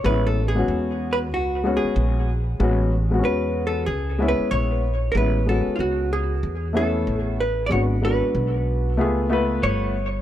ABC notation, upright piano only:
X:1
M:4/4
L:1/16
Q:"Swing 16ths" 1/4=94
K:A
V:1 name="Upright piano"
[G,B,CE]2 z [G,B,CF]4- [G,B,CF] z2 [G,B,CF]4 z2 | [G,B,CF]2 z [G,B,=C^CF]4- [G,B,=C^CF] z2 [G,B,CE]4 z2 | [G,B,CE] z [G,B,CF]4- [G,B,CF] z3 [A,B,CE]4 z2 | [G,B,DF] z [G,B,DF]4- [G,B,DF] z [A,B,^EG]2 [A,B,EB]4 z2 |]